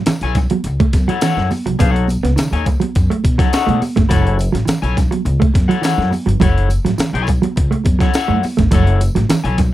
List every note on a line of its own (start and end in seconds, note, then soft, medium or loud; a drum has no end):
0.06 0.17 E3 medium
0.06 muted upright bass stroke soft
0.06 muted clean electric guitar stroke soft
0.06 snare loud
0.06 closed hi-hat loud
0.06 tambourine medium
0.06 muted conga soft
0.21 0.44 B1 medium
0.21 0.36 E4 medium
0.21 0.37 A4 medium
0.21 0.37 C#5 medium
0.21 0.38 G#5 medium
0.21 muted clean electric guitar stroke soft
0.21 closed hi-hat soft
0.35 muted clean electric guitar stroke soft
0.35 kick medium
0.35 snare soft
0.35 closed hi-hat medium
0.35 tambourine soft
0.35 low conga medium
0.50 0.60 F#3 medium
0.50 muted clean electric guitar stroke soft
0.50 closed hi-hat medium
0.50 high conga medium
0.64 0.76 C#2 medium
0.64 muted clean electric guitar stroke soft
0.64 closed hi-hat loud
0.64 tambourine soft
0.64 muted conga soft
0.80 0.89 A3 medium
0.80 muted clean electric guitar stroke soft
0.80 kick loud
0.80 closed hi-hat soft
0.93 1.05 F#2 loud
0.93 muted clean electric guitar stroke soft
0.93 kick medium
0.93 snare soft
0.93 closed hi-hat medium
0.93 tambourine soft
0.93 high conga medium
1.08 1.17 F#3 medium
1.08 1.21 E4 medium
1.08 1.21 A4 medium
1.08 1.22 C#5 medium
1.08 1.23 F#5 medium
1.08 closed hi-hat medium
1.21 1.33 E3 medium
1.21 1.48 E4 medium
1.21 1.49 A4 medium
1.21 1.49 C#5 medium
1.21 1.49 F#5 medium
1.21 snare loud
1.21 closed hi-hat medium
1.21 tambourine loud
1.21 muted conga soft
1.37 1.48 F#2 medium
1.37 snare soft
1.37 low conga medium
1.50 muted clean electric guitar stroke soft
1.50 open hi-hat medium
1.50 tambourine soft
1.50 high conga medium
1.66 1.77 C2 medium
1.66 1.75 F#3 medium
1.66 muted clean electric guitar stroke soft
1.66 closed hi-hat medium
1.79 2.15 B1 loud
1.79 1.90 B3 loud
1.79 1.90 D4 medium
1.79 1.90 G#4 medium
1.79 1.91 C5 medium
1.79 1.91 F5 medium
1.79 kick loud
1.79 closed hi-hat medium
1.79 tambourine medium
1.79 low conga medium
1.90 2.06 D#4 medium
1.90 2.06 A4 medium
1.90 2.06 C#5 medium
1.90 2.07 F#5 medium
1.94 closed hi-hat soft
1.94 muted conga soft
2.08 muted clean electric guitar stroke soft
2.08 closed hi-hat medium
2.08 tambourine medium
2.08 high conga medium
2.23 2.34 C#2 medium
2.23 2.33 B3 medium
2.23 muted clean electric guitar stroke soft
2.23 snare soft
2.23 closed hi-hat medium
2.36 2.47 D#3 medium
2.36 muted upright bass stroke soft
2.36 muted clean electric guitar stroke soft
2.36 snare loud
2.36 closed hi-hat loud
2.36 tambourine medium
2.36 muted conga soft
2.51 2.75 D#2 medium
2.51 2.65 D#4 medium
2.51 2.65 A4 medium
2.51 2.66 C#5 medium
2.51 2.66 G#5 medium
2.51 muted clean electric guitar stroke soft
2.51 closed hi-hat soft
2.51 muted conga soft
2.66 muted clean electric guitar stroke soft
2.66 kick medium
2.66 closed hi-hat medium
2.66 tambourine soft
2.66 low conga medium
2.80 2.90 F#3 medium
2.80 muted clean electric guitar stroke soft
2.80 closed hi-hat medium
2.80 high conga medium
2.95 3.08 F#2 loud
2.95 muted clean electric guitar stroke soft
2.95 kick medium
2.95 closed hi-hat medium
2.95 tambourine soft
3.10 3.20 A3 medium
3.10 muted clean electric guitar stroke soft
3.10 closed hi-hat soft
3.10 muted conga soft
3.24 3.37 B2 medium
3.24 muted clean electric guitar stroke soft
3.24 kick medium
3.24 closed hi-hat medium
3.24 high conga medium
3.38 3.48 F#3 medium
3.38 3.51 D#4 medium
3.38 3.52 A4 medium
3.38 3.52 C#5 medium
3.38 3.53 F#5 medium
3.38 kick loud
3.38 snare soft
3.38 closed hi-hat medium
3.52 3.79 D#4 medium
3.52 3.80 A4 medium
3.52 3.80 C#5 loud
3.52 3.80 F#5 loud
3.52 snare loud
3.52 closed hi-hat medium
3.52 tambourine loud
3.52 muted conga soft
3.67 3.79 B2 medium
3.67 3.77 A3 medium
3.67 closed hi-hat soft
3.67 low conga medium
3.82 muted clean electric guitar stroke soft
3.82 open hi-hat medium
3.82 tambourine soft
3.82 high conga medium
3.96 4.08 G1 medium
3.96 4.06 A3 medium
3.96 muted clean electric guitar stroke soft
3.96 kick loud
3.96 snare soft
3.96 closed hi-hat medium
4.09 4.46 F#1 medium
4.09 4.20 F#3 loud
4.09 4.36 E4 medium
4.09 4.37 A4 medium
4.09 4.37 C#5 medium
4.09 4.37 F#5 medium
4.09 kick loud
4.09 closed hi-hat medium
4.09 tambourine medium
4.09 low conga medium
4.25 closed hi-hat soft
4.25 muted conga soft
4.38 muted clean electric guitar stroke soft
4.38 closed hi-hat medium
4.38 tambourine medium
4.52 4.65 A1 medium
4.52 4.63 F#3 medium
4.52 muted clean electric guitar stroke soft
4.52 snare soft
4.52 closed hi-hat medium
4.65 4.77 E3 medium
4.65 muted upright bass stroke soft
4.65 muted clean electric guitar stroke soft
4.65 snare loud
4.65 closed hi-hat loud
4.65 tambourine medium
4.82 5.06 B1 medium
4.82 4.96 E4 medium
4.82 4.96 A4 medium
4.82 4.96 C#5 medium
4.82 4.98 G#5 medium
4.82 muted clean electric guitar stroke soft
4.82 closed hi-hat soft
4.82 muted conga soft
4.97 muted clean electric guitar stroke soft
4.97 kick medium
4.97 snare soft
4.97 closed hi-hat medium
4.97 tambourine soft
4.97 low conga medium
5.11 5.21 F#3 medium
5.11 muted clean electric guitar stroke medium
5.11 closed hi-hat medium
5.11 high conga medium
5.25 5.38 C#2 loud
5.25 muted clean electric guitar stroke soft
5.25 closed hi-hat medium
5.25 tambourine soft
5.40 5.50 A3 medium
5.40 muted clean electric guitar stroke medium
5.40 kick loud
5.40 closed hi-hat soft
5.40 muted conga soft
5.54 5.67 F#2 medium
5.54 muted clean electric guitar stroke soft
5.54 kick medium
5.54 snare soft
5.54 closed hi-hat medium
5.54 high conga medium
5.68 5.79 F#3 medium
5.68 5.80 E4 medium
5.68 5.82 A4 medium
5.68 5.82 C#5 medium
5.68 5.83 F#5 medium
5.68 closed hi-hat medium
5.81 5.93 E3 medium
5.81 6.09 E4 medium
5.81 6.10 A4 medium
5.81 6.10 C#5 medium
5.81 6.10 F#5 medium
5.81 snare medium
5.81 closed hi-hat medium
5.81 tambourine loud
5.81 muted conga soft
5.98 6.09 F#2 medium
5.98 snare soft
5.98 muted conga soft
5.98 low conga medium
6.11 muted clean electric guitar stroke soft
6.11 open hi-hat medium
6.11 tambourine soft
6.11 high conga medium
6.26 6.38 G1 medium
6.26 6.36 F#3 medium
6.26 muted clean electric guitar stroke soft
6.26 closed hi-hat medium
6.40 6.77 F#1 medium
6.40 6.51 F#3 medium
6.40 6.68 E4 medium
6.40 6.68 A4 medium
6.40 6.69 C#5 medium
6.40 6.69 F#5 medium
6.40 kick loud
6.40 closed hi-hat medium
6.40 tambourine medium
6.40 muted conga soft
6.40 low conga medium
6.58 closed hi-hat soft
6.69 muted clean electric guitar stroke soft
6.69 closed hi-hat medium
6.69 tambourine medium
6.85 6.96 A1 medium
6.85 6.94 F#3 medium
6.85 muted clean electric guitar stroke soft
6.85 snare soft
6.85 closed hi-hat medium
6.98 7.09 E3 medium
6.98 muted upright bass stroke soft
6.98 muted clean electric guitar stroke soft
6.98 snare loud
6.98 closed hi-hat loud
6.98 tambourine medium
7.13 7.37 B1 loud
7.13 7.27 E4 medium
7.13 7.27 A4 medium
7.13 7.28 C#5 medium
7.13 7.29 G#5 medium
7.13 muted clean electric guitar stroke soft
7.13 closed hi-hat soft
7.13 muted conga soft
7.27 muted clean electric guitar stroke soft
7.27 kick medium
7.27 closed hi-hat medium
7.27 tambourine soft
7.27 low conga medium
7.42 7.52 F#3 medium
7.42 muted clean electric guitar stroke soft
7.42 closed hi-hat medium
7.42 high conga medium
7.56 7.69 C#2 loud
7.56 muted clean electric guitar stroke soft
7.56 kick loud
7.56 closed hi-hat medium
7.56 muted conga soft
7.71 7.81 A3 medium
7.71 muted clean electric guitar stroke medium
7.71 closed hi-hat soft
7.71 muted conga soft
7.84 7.98 F#2 medium
7.84 muted clean electric guitar stroke soft
7.84 kick medium
7.84 closed hi-hat medium
7.84 high conga medium
7.99 8.09 F#3 medium
7.99 8.14 E4 medium
7.99 8.14 A4 medium
7.99 8.15 C#5 medium
7.99 8.16 F#5 medium
7.99 kick medium
7.99 snare soft
7.99 closed hi-hat soft
8.13 8.42 E4 medium
8.13 8.42 A4 medium
8.13 8.42 C#5 medium
8.13 8.42 F#5 loud
8.13 snare loud
8.13 closed hi-hat medium
8.13 tambourine loud
8.13 muted conga soft
8.28 8.40 F#2 medium
8.28 8.38 A3 medium
8.28 low conga medium
8.43 muted clean electric guitar stroke soft
8.43 open hi-hat medium
8.43 tambourine soft
8.43 high conga medium
8.57 8.69 G1 medium
8.57 8.67 A3 medium
8.57 muted clean electric guitar stroke soft
8.57 kick medium
8.57 snare soft
8.57 closed hi-hat medium
8.71 9.07 F#1 loud
8.71 8.82 F#3 loud
8.71 8.99 E4 medium
8.71 8.99 A4 medium
8.71 9.00 C#5 medium
8.71 9.00 F#5 loud
8.71 kick loud
8.71 closed hi-hat medium
8.71 tambourine medium
8.71 low conga medium
8.87 closed hi-hat soft
8.87 muted conga soft
9.01 muted clean electric guitar stroke soft
9.01 closed hi-hat medium
9.01 tambourine medium
9.15 9.27 A1 medium
9.15 9.25 F#3 medium
9.15 muted clean electric guitar stroke soft
9.15 snare soft
9.15 closed hi-hat medium
9.29 9.40 E3 medium
9.29 muted upright bass stroke soft
9.29 muted clean electric guitar stroke soft
9.29 snare loud
9.29 closed hi-hat loud
9.29 tambourine medium
9.44 9.68 B1 medium
9.44 9.57 E4 medium
9.44 9.57 A4 medium
9.44 9.58 C#5 medium
9.44 9.59 G#5 medium
9.44 muted clean electric guitar stroke soft
9.44 closed hi-hat soft
9.44 muted conga soft
9.58 muted clean electric guitar stroke soft
9.58 kick medium
9.58 snare soft
9.58 closed hi-hat medium
9.58 tambourine soft
9.58 low conga medium